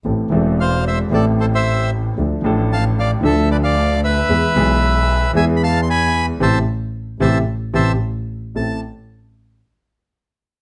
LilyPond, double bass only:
\new Staff \with { instrumentName = "Double bass" } { \clef bass \time 4/4 \key a \minor \tempo 4 = 113 a,,8 e,,4. a,,2 | d,8 a,,4. d,2 | e,8 b,,4. e,2 | a,,8 r4 a,,8 r8 a,,8 r4 |
a,,8 r2. r8 | }